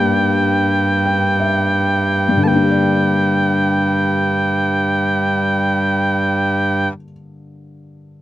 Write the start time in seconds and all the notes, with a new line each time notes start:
Already playing: G2 G3 A#3 D4 G4 G5
1.06 G5
1.40 E5
2.28 G2
2.37 D3
2.44 A#3 A5
2.48 G5
2.54 D4
2.62 G4
2.70 D5